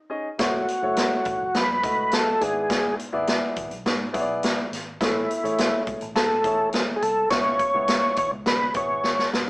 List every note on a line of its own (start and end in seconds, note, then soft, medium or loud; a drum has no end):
0.10 0.27 C#4 medium
0.10 0.27 D#4 medium
0.10 0.27 G#4 medium
0.10 0.27 D#5 medium
0.38 0.65 F#1 medium
0.38 0.64 A3 medium
0.38 0.64 E4 medium
0.38 0.64 F#4 medium
0.38 1.59 F#4 medium
0.38 0.64 C#5 medium
0.38 kick loud
0.38 snare loud
0.38 closed hi-hat medium
0.68 closed hi-hat medium
0.82 1.08 F#1 medium
0.82 1.40 A3 medium
0.82 1.40 E4 medium
0.82 1.41 F#4 medium
0.82 1.41 C#5 medium
0.96 snare loud
0.96 closed hi-hat loud
1.25 1.39 A1 medium
1.25 kick medium
1.25 closed hi-hat medium
1.41 1.53 F#1 medium
1.55 1.80 F#2 loud
1.55 2.15 B4 loud
1.55 snare loud
1.55 closed hi-hat medium
1.83 2.34 C#2 medium
1.83 2.33 A3 medium
1.83 2.33 E4 medium
1.83 2.33 F#4 medium
1.83 2.33 D#5 medium
1.83 kick medium
1.83 closed hi-hat medium
2.11 2.43 A4 loud
2.11 snare loud
2.11 closed hi-hat medium
2.40 2.92 G#1 loud
2.40 3.23 G#2 medium
2.40 2.98 B3 medium
2.40 2.98 E4 medium
2.40 2.99 G#4 medium
2.40 2.95 G#4 loud
2.40 2.99 D5 medium
2.40 closed hi-hat medium
2.70 kick loud
2.70 snare loud
2.70 closed hi-hat loud
2.99 closed hi-hat medium
3.12 3.39 G#1 medium
3.12 3.71 B3 medium
3.12 3.71 E4 medium
3.12 3.71 G#4 medium
3.12 3.71 D5 loud
3.27 snare loud
3.27 closed hi-hat loud
3.56 3.69 G#1 medium
3.56 kick medium
3.56 closed hi-hat medium
3.71 3.87 B1 medium
3.71 closed hi-hat medium
3.86 4.11 G#2 loud
3.86 snare loud
3.86 closed hi-hat medium
4.13 4.65 B1 loud
4.13 4.63 B3 medium
4.13 4.63 E4 medium
4.13 4.63 G#4 medium
4.13 4.21 C#5 medium
4.13 kick medium
4.13 closed hi-hat medium
4.20 4.67 D5 loud
4.43 snare loud
4.43 closed hi-hat medium
4.72 4.97 G#1 medium
4.72 snare soft
4.72 closed hi-hat medium
5.01 5.26 A1 loud
5.01 5.83 A2 medium
5.01 5.25 A3 medium
5.01 5.83 E4 medium
5.01 5.26 E4 medium
5.01 5.26 G#4 medium
5.01 5.26 C#5 medium
5.01 kick loud
5.01 snare loud
5.01 closed hi-hat medium
5.31 closed hi-hat medium
5.43 5.69 A1 medium
5.43 6.01 A3 medium
5.43 6.02 E4 medium
5.43 6.02 G#4 medium
5.43 6.02 C#5 medium
5.43 closed hi-hat medium
5.58 snare loud
5.58 closed hi-hat loud
5.87 6.00 C#2 medium
5.87 kick medium
5.87 closed hi-hat medium
6.01 6.14 A1 loud
6.01 closed hi-hat medium
6.15 6.41 A2 loud
6.15 6.69 A4 loud
6.15 snare loud
6.15 closed hi-hat medium
6.44 6.95 E2 loud
6.44 6.94 A3 medium
6.44 6.94 E4 medium
6.44 6.94 G#4 medium
6.44 6.95 C#5 medium
6.44 kick medium
6.44 closed hi-hat medium
6.73 snare loud
6.73 closed hi-hat medium
6.96 7.03 G#4 medium
7.02 7.28 C2 loud
7.02 7.29 A4 medium
7.02 closed hi-hat medium
7.30 7.56 C#2 medium
7.30 8.14 C#3 medium
7.30 7.56 B3 medium
7.30 7.56 E4 medium
7.30 7.56 G#4 medium
7.30 8.17 C#5 loud
7.30 7.56 C#5 medium
7.30 kick loud
7.30 snare loud
7.30 closed hi-hat medium
7.59 kick medium
7.59 closed hi-hat medium
7.74 8.00 C#2 medium
7.74 8.32 B3 medium
7.74 8.32 E4 medium
7.74 8.33 G#4 medium
7.74 8.33 C#5 medium
7.88 snare loud
7.88 closed hi-hat loud
8.16 8.30 E2 medium
8.16 8.31 C#5 loud
8.16 kick medium
8.16 closed hi-hat medium
8.31 8.44 C#2 medium
8.46 8.72 C#3 loud
8.46 8.74 B4 loud
8.46 snare loud
8.46 closed hi-hat medium
8.74 9.26 G#1 loud
8.74 9.25 B3 medium
8.74 9.25 E4 medium
8.74 9.26 G#4 medium
8.74 9.26 C#5 medium
8.74 9.30 C#5 medium
8.74 kick medium
8.74 closed hi-hat medium
9.04 snare medium
9.19 snare medium
9.33 9.50 F1 medium
9.33 snare loud